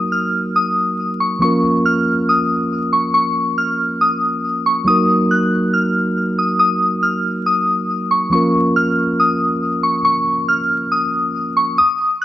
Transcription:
Already playing: tine electric piano F#3 A#3 D#4 F#4 A#4
0.12 synth bell F6
0.56 synth bell D#6
1.20 synth bell C#6
1.39 tine electric piano F3 A#3 C#4 F4, synth bell C#6
1.45 tine electric piano A#4
1.86 synth bell F6
2.29 synth bell D#6
2.93 synth bell C#6
3.14 synth bell C#6
3.58 synth bell F6
4.01 synth bell D#6
4.66 synth bell C#6
4.85 tine electric piano F#3 A#3 D#4, synth bell D#6
4.89 tine electric piano F#4 A#4
5.31 synth bell F#6
5.73 synth bell F6
6.39 synth bell D#6
6.59 synth bell D#6
7.03 synth bell F6
7.46 synth bell D#6
8.11 synth bell C#6
8.30 tine electric piano F3 A#3 C#4 F4, synth bell C#6
8.35 tine electric piano A#4
8.76 synth bell F6
9.20 synth bell D#6
9.83 synth bell C#6
10.05 synth bell C#6
10.48 synth bell F6
10.92 synth bell D#6
11.57 synth bell C#6
11.78 synth bell D#6
12.22 synth bell F#6

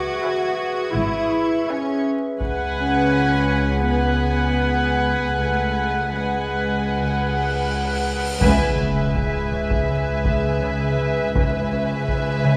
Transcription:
Already playing: cello section F#4, glass harmonica G#4 B4 E5, violin section C#6 D6 G#6
0.12 violin section D#6
0.24 viola section B4 E5, violin section G#5
0.95 double bass section G#1, cello section E4
1.69 cello section C#4, viola section B4 E5, violin section G#5
2.40 double bass section C#2, glass harmonica G#4 B4 F#5, viola section B4 F#5, violin section G#5, taiko
2.78 cello section C#4
3.88 cello section B3, viola section B4 F#5, violin section G#5
5.38 double bass section C#2, cello section A3, glass harmonica G#4 B4 F#5, cymbal swell
6.15 cello section G#3, viola section B4 F#5, violin section G#5
8.41 double bass section C#2, cello section C#2, harp C#3, timpani C#3, glass harmonica G#4 B4 E5, viola section B4, violin section E5 G#5, taiko, sub drop
8.78 harp C#4
9.15 harp C#3, taiko
9.52 harp C#3
9.70 taiko
9.90 harp C#3
10.25 harp C#3, taiko
10.62 harp C#3
11.00 harp C#3
11.35 double bass section C#2, cello section C#2, harp C#3, glass harmonica G#4 B4 E5, viola section B4, violin section E5 G#5, taiko
11.73 harp C#4
12.08 harp C#3, taiko
12.44 harp C#3

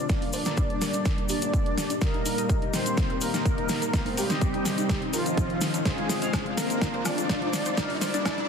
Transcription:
Already playing: supersaw synth D4 D5, riser
0.09 ambient pad A#2 D3 G3 D4 G4, analog polysynth G3 A#3 D4 A#4 F5, synth pluck D4, kick, snare, closed hi-hat, cabasa
0.22 synth pluck D4, open hi-hat
0.33 analog synth bass G1, supersaw synth D4 D5, synth pluck C5, open hi-hat, cabasa
0.45 analog synth bass G1, analog polysynth G3 A#3 D4 A#4 D5, synth pluck D4, snare, closed hi-hat, cabasa
0.57 synth pluck D4, kick, closed hi-hat, cabasa
0.70 synth pluck D4, closed hi-hat
0.81 analog synth bass G1, synth pluck A#4, snare, open hi-hat, cabasa
0.93 analog synth bass F1, synth pluck D4, closed hi-hat, cabasa
1.05 synth pluck D4, kick, snare, closed hi-hat, cabasa
1.18 synth pluck D4, closed hi-hat
1.29 analog synth bass G1, supersaw synth D4 D5, synth pluck G4, open hi-hat, cabasa
1.42 analog synth bass G1, synth pluck D4, closed hi-hat, cabasa
1.53 synth pluck D4, kick, closed hi-hat, cabasa
1.66 closed hi-hat
1.77 analog synth bass G1, synth pluck D4, snare, open hi-hat, cabasa
1.90 analog synth bass G1, synth pluck D4, closed hi-hat, cabasa
2.01 ambient pad D#3 G3 D#4 G4, analog polysynth G3 A#3 D#4 A#4 D#5, supersaw synth A#3 A#4, synth pluck A#4, kick, snare, closed hi-hat, cabasa
2.14 synth pluck D#4, closed hi-hat
2.25 synth pluck D#4, open hi-hat, cabasa
2.38 analog synth bass D#1, analog polysynth G3 A#3 D#4 A#4 D#5, closed hi-hat, cabasa
2.49 synth pluck D#4, kick, closed hi-hat, cabasa
2.62 synth pluck D#4, closed hi-hat
2.73 analog synth bass D#1, supersaw synth C4 C5, synth pluck G4, snare, open hi-hat, cabasa
2.86 synth pluck D#4, closed hi-hat, cabasa
2.97 synth pluck D#4, kick, snare, closed hi-hat, cabasa
3.10 synth pluck A#4, closed hi-hat
3.21 analog synth bass D#2, supersaw synth A#3 A#4, synth pluck D#4, open hi-hat, cabasa
3.34 analog synth bass D#2, synth pluck D#4, snare, closed hi-hat, cabasa
3.45 kick, closed hi-hat, cabasa
3.58 synth pluck D#4, closed hi-hat
3.69 synth pluck D#4, snare, open hi-hat, cabasa
3.82 synth pluck A#4, closed hi-hat, cabasa
3.93 ambient pad G#2 C3 C4 D#4, analog polysynth G#3 C4 D#4 C5 F5, synth pluck D#4, kick, snare, closed hi-hat, cabasa
4.06 synth pluck D#4, open hi-hat
4.17 analog synth bass G#1, supersaw synth G3 G4, synth pluck A#4, open hi-hat, cabasa
4.30 analog synth bass G#1, analog polysynth C4 D#4 C5 D#5, synth pluck D#4, snare, closed hi-hat, cabasa
4.41 synth pluck D#4, kick, closed hi-hat, cabasa
4.54 synth pluck D#4, closed hi-hat
4.65 analog synth bass G#1, synth pluck G#4, snare, open hi-hat, cabasa
4.78 synth pluck D#4, closed hi-hat, cabasa
4.89 synth pluck D#4, kick, snare, closed hi-hat, cabasa
5.02 synth pluck D#4, closed hi-hat
5.13 analog synth bass G#1, supersaw synth F3 F4, synth pluck A#4, open hi-hat, cabasa
5.26 analog synth bass G#1, synth pluck D#4, closed hi-hat, cabasa
5.37 synth pluck D#4, kick, closed hi-hat, cabasa
5.50 closed hi-hat
5.61 analog synth bass G#1, synth pluck D#4, snare, open hi-hat, cabasa
5.74 analog synth bass D#2, synth pluck D#4, closed hi-hat, cabasa
5.85 ambient pad F3 G#3 F4, supersaw synth G#3 G#4, analog polysynth G#3 D#4 F4 C5 F5, synth pluck C5, kick, snare, closed hi-hat, cabasa
5.98 synth pluck F4, closed hi-hat
6.09 synth pluck F4, snare, open hi-hat, cabasa
6.22 analog polysynth G#3 C4 F4 C5 F5, closed hi-hat, cabasa
6.33 synth pluck F4, kick, snare, closed hi-hat, cabasa, high woodblock
6.46 synth pluck F4, closed hi-hat
6.57 analog synth bass F1, supersaw synth A#3 A#4, synth pluck A#4, snare, open hi-hat, cabasa
6.70 analog synth bass F1, synth pluck F4, closed hi-hat, cabasa
6.81 synth pluck F4, kick, snare, closed hi-hat, cabasa
6.94 synth pluck C5, closed hi-hat
7.05 analog synth bass F2, supersaw synth D4 D5, synth pluck F4, snare, open hi-hat, cabasa, high woodblock
7.18 analog synth bass F2, synth pluck F4, closed hi-hat, cabasa
7.29 kick, snare, closed hi-hat, cabasa
7.42 synth pluck F4, closed hi-hat
7.53 analog synth bass F1, synth pluck F4, snare, open hi-hat, cabasa
7.65 analog synth bass F1, synth pluck C5, closed hi-hat, cabasa
7.77 ambient pad A#2 D3 G3 D4 G4, analog polysynth G3 A#3 D4 A#4 F5, synth pluck D4, kick, snare, closed hi-hat, cabasa
7.90 synth pluck D4, open hi-hat
8.01 analog synth bass G1, supersaw synth D4 D5, synth pluck C5, snare, open hi-hat, cabasa
8.14 analog synth bass G1, analog polysynth G3 A#3 D4 A#4 D5, synth pluck D4, closed hi-hat, cabasa
8.25 synth pluck D4, kick, snare, closed hi-hat, cabasa, high woodblock
8.38 synth pluck D4, closed hi-hat

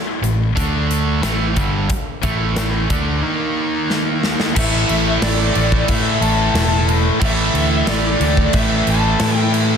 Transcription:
0.21 fingered electric bass A1, distorted electric guitar A2 E3, closed hi-hat
0.55 fingered electric bass D2, distorted electric guitar D3 A3 D4, kick, closed hi-hat
0.91 closed hi-hat
1.21 fingered electric bass A1, distorted electric guitar A2 E3 A3, snare, closed hi-hat
1.55 fingered electric bass G1, distorted electric guitar G2 D3 G3, kick, closed hi-hat
1.89 muted distorted electric guitar stroke, muted overdriven electric guitar stroke, kick, closed hi-hat
2.22 fingered electric bass A1, distorted electric guitar A2 E3 A3, kick, closed hi-hat
2.56 snare, closed hi-hat
2.89 fingered electric bass D2, distorted electric guitar D3 A3 D4, kick, closed hi-hat
3.23 distorted electric guitar D#3 A#3 D#4
3.90 snare
4.23 snare
4.40 snare
4.54 fingered electric bass A1, distorted electric guitar A2 E3 A3, kick, crash
4.59 lead electric guitar E5
4.89 fingered electric bass A1, crash
5.22 fingered electric bass A1, lead electric guitar D5, snare, crash
5.54 fingered electric bass A1, distorted electric guitar A2 E3 A3, crash
5.72 kick
5.88 fingered electric bass A2, overdriven electric guitar A2 E3, lead electric guitar E5, kick, crash
5.92 overdriven electric guitar A3
6.21 fingered electric bass A1, lead electric guitar A5, crash
6.54 fingered electric bass E1, snare, crash
6.89 crash
7.20 fingered electric bass A1, distorted electric guitar A2 E3 A3, kick, crash
7.25 lead electric guitar E5
7.54 fingered electric bass D2, crash
7.87 fingered electric bass A1, lead electric guitar D5, snare, crash
8.19 fingered electric bass D2, distorted electric guitar A2 E3 A3, crash
8.37 kick
8.53 fingered electric bass A1, overdriven electric guitar A2 E3 A3, lead electric guitar E5, kick, crash
8.87 fingered electric bass A1, lead electric guitar A5, crash
9.20 fingered electric bass A2, snare, crash
9.36 lead electric guitar G5
9.54 crash

